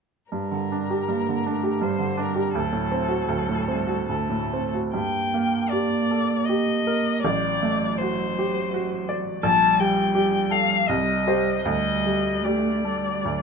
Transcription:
0.30 G2 G3 A#4
0.51 D3
0.72 D4
0.90 G4
1.08 G2 A#3
1.29 D3
1.46 A3 D4
1.63 G4
1.81 G2 G3 C5
1.99 D3
2.17 D4 A#4
2.35 G4
2.55 D2 F#3 A4
2.73 A2
2.92 C4
3.09 F#4
3.27 D2 F#3
3.49 A2
3.67 G3 C4
3.87 F#4
4.08 D2 A3 A4
4.30 A2
4.53 C4
4.74 F#4
4.94 G2 A#3 G5
5.34 A#3
5.70 G4 D5
6.11 A4
6.45 G4 D#5
6.87 A#4
7.23 A1 F#3 D5
7.62 A3
7.98 F#4 C5
8.39 G4
8.74 F#4
9.09 D5
9.43 A#1 G3 A5
9.80 G3 G5
10.15 G4
10.51 A4 F5
10.89 C2 G3 D#5
11.27 G4 C5
11.65 D2 G3 D#5
12.06 G3
12.42 A3 G4 D5
12.83 G3 A4
13.23 D2 F#3

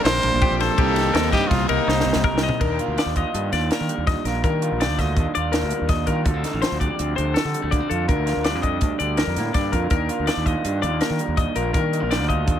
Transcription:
Already playing: A#2 F3 G3 A#3 C4 D4 F4
0.04 A#1 G4 A#4 C5, snare, ride
0.23 A#1 D4, ride
0.34 A#1
0.42 A#2 G4, kick, ride
0.51 A#1
0.60 F3 A4 C5, snare, ride
0.77 C2 C3 D#3 G3 A#3 C4 D#4 G4, kick, ride
0.81 C4 D#4
0.96 D#3, snare, ride
1.14 D#2 C4 A#4, snare, ride
1.32 G2 D#4 G4 D#5, kick, ride
1.47 C2 F4, kick, ride
1.52 C4, snare
1.68 C2 A#3 D#4 A#4, ride
1.87 C2 D#4 C5, snare
2.01 snare
2.05 C2 C4
2.13 C2, snare
2.24 C3 D#4 A#4, kick
2.33 C2
2.38 D#3, snare
2.43 D#5
2.49 floor tom
2.59 D#2 D4 A#4, kick, crash
2.79 F4, closed hi-hat
2.88 D2
2.98 D#3 D4 D5, snare, closed hi-hat
3.06 D#2
3.16 F4 D#5, kick, closed hi-hat
3.34 G2 D4, closed hi-hat
3.52 D#2 A#2 F4 D5, snare, closed hi-hat
3.70 D4 A#4, snare, closed hi-hat
3.81 D#3
3.89 G3, closed hi-hat
3.98 D#2
4.07 D#2 D4 D#5, kick, snare, closed hi-hat
4.25 A#1 F4 A#4, snare, closed hi-hat
4.44 D#2 D#3 D4 A#4, kick, closed hi-hat
4.62 F4, closed hi-hat
4.72 A#1
4.80 D#3 D4 D5, snare, closed hi-hat
4.89 D2
4.99 F4 D#5, kick, snare, closed hi-hat
5.16 D#2 D4, kick, closed hi-hat
5.35 D#2 A#2 F4 D5, closed hi-hat
5.52 D4 A#4, snare, closed hi-hat
5.63 D2
5.70 G3, closed hi-hat
5.81 D#2
5.89 D#2 D4 D#5, kick, snare, closed hi-hat
6.07 D#3 F4 A#4, kick, closed hi-hat
6.24 D2 D3 A#3 A4, kick, closed hi-hat
6.34 C4
6.44 D#4, snare, closed hi-hat
6.53 A1 F4
6.62 F3 C4 C5, snare, closed hi-hat
6.72 D2
6.80 G4 D5, kick, closed hi-hat
6.99 D2 C4, closed hi-hat
7.16 D2 D3 G4 C5, closed hi-hat
7.34 C4 A4, snare, closed hi-hat
7.45 D3
7.54 G3, closed hi-hat
7.62 D2 A3
7.70 D3 A#3 D5, kick, closed hi-hat
7.80 C4
7.90 F2 F4 A4, closed hi-hat
8.07 D2 D3 D4 A#4, kick, closed hi-hat
8.25 F4, snare, closed hi-hat
8.37 D2
8.44 G3 D4 D5, snare, closed hi-hat
8.55 F2
8.62 G4 D#5, kick, closed hi-hat
8.81 D2 D4, kick, closed hi-hat
8.99 D2 D3 G4 D5, closed hi-hat
9.17 D4 A#4, snare, closed hi-hat
9.27 F2
9.36 A2 A#3, snare, closed hi-hat
9.53 G2 D3 D4 D5, kick, snare, closed hi-hat
9.72 F2 F4 A#4, kick, closed hi-hat
9.90 D#2 D4 A#4, kick, closed hi-hat
10.09 F4, closed hi-hat
10.19 D2
10.27 D#3 D4 D5, snare, closed hi-hat
10.37 D#2
10.45 F4 D#5, kick, closed hi-hat
10.65 G2 D4, closed hi-hat
10.82 D#2 A#2 F4 D5, closed hi-hat
11.01 D4 A#4, snare, closed hi-hat
11.10 D#3
11.19 G3, closed hi-hat
11.28 D#2
11.37 D#2 D4 D#5, kick, closed hi-hat
11.56 A#1 F4 A#4, closed hi-hat
11.73 D#2 D#3 D4 A#4, kick, closed hi-hat
11.93 D#4, closed hi-hat
12.00 A#1 F4
12.10 D#3 D4 D5, snare, closed hi-hat
12.21 D2
12.27 F4 D#5, kick, closed hi-hat
12.46 D#2 D4, kick, closed hi-hat

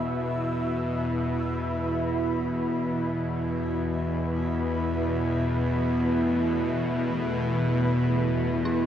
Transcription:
Already playing: E2 B2 E4 B4 E5
3.64 E3
4.84 A3
8.65 E4

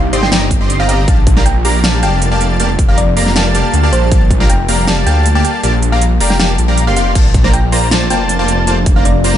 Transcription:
Already playing: C2 C3 G3 A#3 D4 D#4
0.13 G1 C4 G4 D5 D#5 C6, closed hi-hat
0.23 G5, snare
0.32 G1 C4 G4 D5 D#5 G5 A#5, snare, closed hi-hat
0.51 kick, closed hi-hat
0.61 C4 G4 D5 D#5 C6
0.70 closed hi-hat
0.80 C4 G4 D5 D#5 F5 A#5
0.89 C4 G4 D5 D#5 F5 A#5, closed hi-hat
1.08 A#1 A#3 F4 G4 D5 F5 A5, kick, closed hi-hat
1.27 kick, closed hi-hat
1.37 A#3 G4 D5 F5 A#5, snare
1.46 G5, closed hi-hat
1.65 A#3 G4 D5 F5 A#5, open hi-hat
1.84 A#3 G4 D5 F5 A5, snare, closed hi-hat
2.03 F1 A#3 G4 D5 F5 G5 A5, closed hi-hat
2.22 closed hi-hat
2.31 A#3 G4 D5 F5 A5
2.41 closed hi-hat
2.60 A#3 G4 D5 F5 A5, closed hi-hat
2.79 kick, closed hi-hat
2.89 A#3 G4 D5 F5 A#5
2.98 D5, closed hi-hat
3.17 A#3 G4 D5 F5 A#5, open hi-hat
3.27 snare
3.36 A#3 G4 D5 F5 A5, snare, closed hi-hat
3.55 A#3 G4 D5 F5 A5, closed hi-hat
3.73 D2, closed hi-hat
3.83 A#3 G4 D5 F5 A5
3.93 A#1 C5, closed hi-hat
4.12 A#3 G4 D5 F5 A5, kick, closed hi-hat
4.31 kick, closed hi-hat
4.40 A#3 G4 D5 F5 A#5, snare
4.50 F1 G5, closed hi-hat
4.68 F1 A#3 G4 D5 F5 A#5, open hi-hat
4.87 A#3 G4 D5 F5 A5, snare, closed hi-hat
5.06 D2 A#3 G4 D5 F5 G5 A5, closed hi-hat
5.26 closed hi-hat
5.35 A#3 G4 D5 F5 G5 A5
5.44 G5, closed hi-hat
5.64 A#1 A#3 G4 D5 F5 A5, closed hi-hat
5.83 closed hi-hat
5.92 A#3 G4 D5 F5 A#5
6.02 closed hi-hat
6.20 F1 A#3 G4 D5 F5 A#5, open hi-hat
6.30 G5, snare
6.39 A#3 G4 D5 F5 G5 A5, snare, closed hi-hat
6.58 A#1, closed hi-hat
6.68 A#3 G4 D5 F5 A#5
6.78 closed hi-hat
6.87 F1 A#3 G4 D5 F5 C6
6.96 A#3 G4 D5 F5 C6, closed hi-hat
7.15 A#1 A3 A#3 D4 F4 C5 D5 A5, kick, closed hi-hat, crash
7.34 kick, closed hi-hat
7.44 A#3 F4 C5 D5 A#5, snare
7.53 G5, closed hi-hat
7.72 A#3 F4 C5 D5 A#5, open hi-hat
7.91 A#3 F4 C5 D5 A5, snare, closed hi-hat
8.10 F1 A#3 F4 C5 D5 G5 A5, closed hi-hat
8.29 closed hi-hat
8.39 A#3 F4 C5 D5 A5
8.48 closed hi-hat
8.67 A#3 F4 C5 D5 A5, closed hi-hat
8.86 kick, closed hi-hat
8.96 A#3 F4 C5 D5 F5 A#5
9.05 D5, closed hi-hat
9.24 A#3 F4 C5 D5 A#5, open hi-hat
9.34 snare

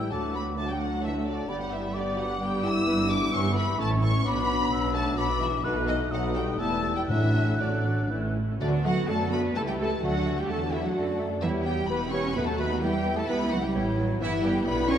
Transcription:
Already playing: A1 A2 E3 G3 A3 E4 G5 E6
0.11 D2 F#3 A3 D4 F#4 A5 D6
0.34 B3 B5
0.57 F#3 A3 D4 F#4 A5
0.68 G3 G5
0.80 F#3 F#5
1.03 E3 E5 A5
1.25 D3 D5
1.48 G1 G2 D3 G3 B3 G4 D5 B5
1.59 F#3 F#5
1.71 E3 E5
1.93 D3 G3 B3 G4 D5 D6
2.16 F#3 F#5
2.39 G3 B3 G4 G5
2.63 E4 E6
2.86 G1 G2 E3 G3 B3 B4
2.98 B3 G4
3.09 G3 D4 B4 D6
3.21 B3 G4
3.32 G1 G2 G3 C#4 B4 C#6 E6
3.44 B3 G4
3.54 G3 B3 B4 B5
3.66 B3 G4
3.78 A1 A2 A3 C#4 E4 A4 A5 C#6
3.91 C#4 C#5
4.01 C#4 E4 A4 C#6
4.13 C#4 C#5
4.25 B1 B2 F#3 B3 D4 F#4 B5 D6
4.37 D4 B4
4.48 B3 F#4
4.60 D4 B4
4.71 B1 B2 B3 F#4 E6
4.83 D4 B4
4.94 A3 B3 F#4 A5
5.06 D4 B4
5.17 B1 B2 B3 F#4 B5 D6
5.28 D4 B4
5.40 E3 B3 F#4 E5
5.52 D4 B4
5.63 B1 B2 A3 D#4 F#4 A4 B4 F#6
5.75 D#4 B4
5.86 D#3 F#4 A4 D#5
5.98 D#4 B4
6.10 B1 B2 F#3 A3 D#4 F#4 A4 F#5 D#6
6.22 D#4 B4
6.35 G3 F#4 A4 G5
6.47 D#4 B4
6.59 E1 E2 G3 A3 B3 E4 G4 A5 E6
6.71 E4 B4
6.83 B3 G4
6.96 G3 E4 B4 G5
7.08 A1 A2 E3 F#3 A3 D4 F#4 E5 F#6
7.21 D4 A4
7.33 A3 F#4
7.47 D4 A4
7.59 A1 A2 D3 F#3 A3 D4 F#4 D5
7.72 D4 A4
7.85 A3 F#4
7.98 D4 A4
8.11 A1 A2 E3 A3 C#4 E4
8.23 C#4 A4
8.36 A3 E4
8.48 C#4 A4
8.60 D2 D3 F#3 A3 B3 D4 F#4 D5 F#5
8.84 F#3 A3 F#4 F#5
9.08 F#2 A3 D4 F#4 A4 D5 A5
9.31 A3 B3 F#4 B4 B5
9.55 C#2 E3 A3 E4 G4 A4 E5 A5
9.67 G3 G4 G5
9.79 A3 G4 A4 A5
10.02 D2 D3 F#3 A3 F#4 A4 D5 F#5
10.26 A3 F#4
10.37 G3 G4 G5
10.48 E2 F#3 A3 D4 F#4 A4 F#5 A5
10.72 E3 A3 E4 F#4 E5
10.83 F#3 F#4 F#5
10.94 F#2 D3 A3 D4 F#4 D5
11.18 F#3 A3 F#4
11.41 E2 E3 G3 B3 E4 G4 C#5 E5
11.64 G3 B3 G4 G5
11.87 E1 G3 B3 E4 G4 B4 B5
12.12 B3 C#4 G4 C#5 C#6
12.35 D#2 F#3 A3 B3 D#4 F#4 B4 F#5 B5
12.46 A3 A4 A5
12.59 A3 B3 F#4 B4 B5
12.81 E2 E3 G3 B3 E4 G4 E5 G5
13.04 B3 E4
13.17 A3 A4 A5
13.28 C#2 E3 B3 E4 G4 B4 B5
13.51 F#3 B3 E4 F#4 F#5
13.63 G3 G4 G5
13.74 A1 G3 B3 E4 C#5
13.98 F#3 B3 E4
14.20 G1 E3 B3 E4 G4 B4 E5
14.42 G3 B3 E4 G4 G5
14.64 B1 D3 B3 E4 B4 D5 B5
14.87 B3 C#4 E4 C#5 C#6

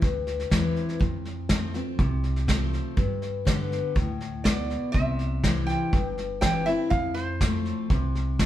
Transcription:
0.02 D2 G2, kick, snare
0.27 snare
0.40 snare
0.50 E2 E3 G3 C4 E4, kick, snare, hi-hat pedal
0.76 snare
0.89 snare
1.00 F2, kick, snare
1.25 snare
1.49 F3 A3 C4 F4, kick, snare, hi-hat pedal
1.74 C4 F4, snare
1.99 C2 C3, kick, snare
2.24 snare
2.36 snare
2.47 F3 A3 C4 F4, kick, snare, hi-hat pedal
2.73 snare
2.97 G2, kick, snare
3.22 snare
3.45 D3 G3 B3 G4, kick, snare, hi-hat pedal
3.72 snare
3.95 D2 A2, kick, snare
4.21 snare
4.44 B2 D5, kick, snare, hi-hat pedal
4.70 snare
4.92 C2 C3 E5, kick, snare
5.19 snare
5.43 E3 G3 C4 E4, kick, snare, hi-hat pedal
5.67 G5, snare
5.93 G1 G2, kick, snare
6.18 snare
6.41 E3 G3 C4 E4 G5, kick, snare, hi-hat pedal
6.66 C4 E4 E5, snare
6.90 F2 F5, kick, snare
7.14 C5, snare
7.41 F3 A3 C4 F4, kick, snare, hi-hat pedal
7.65 snare
7.90 C2 C3, kick, snare
8.15 snare
8.39 F3 A3 C4 F4, kick, snare, hi-hat pedal

